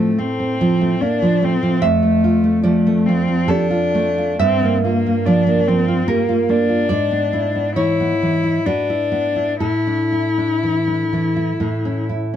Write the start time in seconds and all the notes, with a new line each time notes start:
Already playing: A2 F3 A3 A4
0.00 C4
0.18 A3 C4
0.39 C4
0.61 F3
0.81 A3
1.01 A#3 D4
1.22 F3
1.42 A3 C4
1.63 F3
1.82 F2 A3 E5
2.03 A3
2.24 F4
2.44 A3
2.63 F3 A3 D5
2.87 A3
3.06 F3 C4
3.28 F4
3.48 D4 G4 A4
3.70 F4
3.95 A3
4.18 F4
4.39 G2 C4 E5
4.63 A#3
4.83 A#3 F4
5.06 A#3
5.25 F3 D4 D5
5.47 A#3
5.67 F3 C4
5.88 F4
6.08 A#3 G4 A#4
6.29 F4
6.49 A#3 D4
6.69 F4
6.89 G#2 D5
7.11 B3
7.33 E4
7.56 B3
7.75 E3 E4 C#5
8.00 B3
8.22 E3
8.44 E4
8.65 D4 F#4 B4
8.90 E4
9.12 B3
9.36 E4
9.60 A2 E4 A4
9.87 D4
10.12 E4
10.38 D4
10.63 E3
10.87 D4
11.13 E3
11.36 E4
11.60 A2
11.85 C#4
12.09 E4